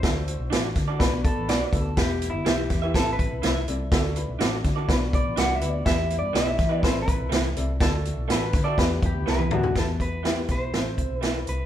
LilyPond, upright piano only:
\new Staff \with { instrumentName = "Upright piano" } { \time 4/4 \key e \minor \tempo 4 = 124 << { r1 | r1 | r8 <d' b'>8 <c' a'>8 <fis' d''>4 r4. | r1 |
r1 | r1 | } \\ { <a d' fis' a'>4 r4 <b d' fis' b'>4 r8 <b d' fis' a'>8 | <b e' g' b'>4 r4 <c' e' a' b'>4 r8 <c' e' a' d''>8 | <a d' fis' a'>4 r4 <b d' fis' b'>4 r8 <b d' fis' b'>8 | <b e' g' b'>4 r4 <c' e' a' b'>4 r8 <c' e' a' d''>8 |
<a d' fis' a'>4 r4 <b e' g' b'>4 r8 <b e' g' d''>8 | <b e' g' b'>8 r8 <b e' g' b'>4 <c' e' a' c''>4. r8 | } >> }